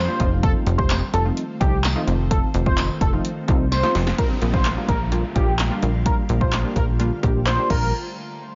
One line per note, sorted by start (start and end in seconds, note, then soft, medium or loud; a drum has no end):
0.00 0.17 D3 medium
0.00 0.17 G3 medium
0.00 0.17 A#3 medium
0.00 4.14 F4 medium
0.00 0.30 C5 medium
0.08 0.18 F3 medium
0.08 0.20 G3 medium
0.08 0.20 A#3 medium
0.08 0.20 D4 medium
0.08 0.19 F4 medium
0.19 0.55 F1 loud
0.19 4.14 D#3 medium
0.19 0.67 F3 medium
0.19 0.67 A3 medium
0.19 4.14 A3 medium
0.19 0.67 C4 medium
0.19 4.14 C4 medium
0.19 0.67 D#4 medium
0.19 0.67 F4 loud
0.19 kick medium
0.19 closed hi-hat medium
0.43 0.52 A4 loud
0.43 kick loud
0.43 closed hi-hat loud
0.67 1.02 F1 loud
0.67 closed hi-hat medium
0.78 1.01 F3 medium
0.78 1.01 A3 medium
0.78 1.01 C4 medium
0.78 1.01 D#4 medium
0.78 1.02 G4 medium
0.78 0.96 C5 medium
0.78 kick loud
0.90 snare medium
0.90 clap loud
0.90 closed hi-hat loud
0.90 tambourine medium
1.14 1.31 F1 loud
1.14 1.22 A4 medium
1.14 closed hi-hat medium
1.25 1.42 F3 medium
1.25 1.43 A3 medium
1.25 1.43 C4 medium
1.25 1.43 D#4 medium
1.25 1.43 F4 medium
1.37 closed hi-hat medium
1.60 1.96 C2 loud
1.60 1.78 F3 medium
1.60 1.78 A3 medium
1.60 1.78 C4 medium
1.60 1.78 D#4 medium
1.60 1.78 G4 medium
1.60 kick loud
1.60 closed hi-hat loud
1.84 snare loud
1.84 clap loud
1.84 closed hi-hat medium
1.84 tambourine medium
1.95 2.13 F3 loud
1.95 2.13 A3 medium
1.95 2.13 C4 medium
1.95 2.13 D#4 medium
1.95 2.13 F4 loud
2.07 2.42 F1 loud
2.07 closed hi-hat medium
2.31 2.48 F3 medium
2.31 2.48 A3 medium
2.31 2.48 C4 medium
2.31 2.48 D#4 medium
2.31 2.48 F4 medium
2.31 2.40 A4 loud
2.31 kick loud
2.31 closed hi-hat loud
2.54 2.89 F1 loud
2.54 closed hi-hat medium
2.66 2.89 F3 medium
2.66 2.89 A3 medium
2.66 2.89 C4 medium
2.66 2.89 D#4 medium
2.66 2.89 F4 medium
2.66 2.84 C5 medium
2.66 kick loud
2.78 snare medium
2.78 clap loud
2.78 closed hi-hat loud
2.78 tambourine medium
3.01 3.19 F1 medium
3.01 3.10 A4 medium
3.01 kick loud
3.01 closed hi-hat medium
3.13 3.30 F3 medium
3.13 3.30 A3 medium
3.13 3.30 C4 medium
3.13 3.30 D#4 medium
3.13 3.30 F4 medium
3.25 closed hi-hat medium
3.48 3.83 C2 loud
3.48 3.65 F3 medium
3.48 3.65 A3 medium
3.48 3.65 C4 medium
3.48 3.65 D#4 medium
3.48 3.65 F4 loud
3.48 kick loud
3.48 closed hi-hat medium
3.72 4.05 C5 medium
3.72 snare medium
3.72 closed hi-hat medium
3.72 tambourine medium
3.83 4.00 F3 medium
3.83 4.00 A3 medium
3.83 4.01 C4 medium
3.83 4.01 D#4 medium
3.83 4.01 F4 medium
3.83 snare medium
3.95 4.13 F1 loud
3.95 snare loud
3.95 open hi-hat medium
4.07 snare loud
4.18 7.67 D3 medium
4.18 4.35 G3 medium
4.18 7.67 G3 medium
4.18 4.36 A#3 medium
4.18 6.04 A#3 medium
4.18 4.36 D4 medium
4.18 4.36 F4 medium
4.18 7.67 F4 medium
4.18 4.27 A#4 loud
4.18 kick loud
4.18 closed hi-hat medium
4.18 downlifter medium
4.42 4.77 A#1 medium
4.42 closed hi-hat medium
4.53 4.65 G3 medium
4.53 4.65 A#3 medium
4.53 4.65 D4 medium
4.53 4.65 F4 medium
4.53 4.71 C5 medium
4.53 kick loud
4.65 snare medium
4.65 clap loud
4.65 closed hi-hat medium
4.77 4.94 G3 medium
4.77 4.94 A#3 medium
4.77 4.94 D4 medium
4.77 4.94 F4 medium
4.88 5.24 A#1 medium
4.88 4.97 A#4 medium
4.88 kick medium
4.88 closed hi-hat medium
5.12 5.23 G3 medium
5.12 5.23 A#3 medium
5.12 5.24 D4 medium
5.12 5.24 F4 loud
5.12 closed hi-hat medium
5.35 5.71 A#1 medium
5.35 5.53 G3 medium
5.35 5.53 A#3 medium
5.35 5.53 D4 medium
5.35 5.53 F4 medium
5.35 5.53 G4 medium
5.35 kick medium
5.35 closed hi-hat medium
5.59 snare loud
5.59 clap loud
5.59 closed hi-hat medium
5.70 5.88 G3 medium
5.70 5.88 A#3 medium
5.70 5.88 D4 medium
5.70 5.88 F4 loud
5.82 6.18 A#1 medium
5.82 closed hi-hat medium
6.06 6.23 G3 medium
6.06 7.68 A3 medium
6.06 6.23 A#3 medium
6.06 6.23 D4 medium
6.06 6.23 F4 medium
6.06 6.15 A#4 loud
6.06 kick loud
6.06 closed hi-hat loud
6.29 6.64 A#1 medium
6.29 closed hi-hat medium
6.41 6.52 G3 medium
6.41 6.52 A#3 medium
6.41 6.52 D4 medium
6.41 6.53 F4 medium
6.41 6.58 C5 medium
6.41 kick loud
6.53 snare medium
6.53 clap loud
6.53 closed hi-hat loud
6.64 6.82 G3 medium
6.64 6.82 A#3 medium
6.64 6.82 D4 medium
6.64 6.82 F4 medium
6.76 7.11 A#1 medium
6.76 6.85 A#4 medium
6.76 kick medium
6.76 closed hi-hat medium
6.99 7.11 G3 medium
6.99 7.11 A#3 medium
6.99 7.11 D4 medium
6.99 7.11 F4 loud
6.99 closed hi-hat medium
7.23 7.58 A#1 loud
7.23 7.40 G3 medium
7.23 7.40 A#3 medium
7.23 7.40 D4 medium
7.23 7.40 G4 loud
7.23 kick medium
7.23 closed hi-hat medium
7.46 7.69 C5 medium
7.46 snare loud
7.46 clap loud
7.46 closed hi-hat medium
7.58 7.69 G3 medium
7.58 7.69 A#3 medium
7.58 7.69 D4 medium
7.58 7.70 G4 medium
7.70 7.92 A#1 loud
7.70 7.92 G3 medium
7.70 7.92 A#3 medium
7.70 7.92 D4 medium
7.70 7.92 F4 medium
7.70 7.92 A#4 medium
7.70 kick loud
7.70 crash medium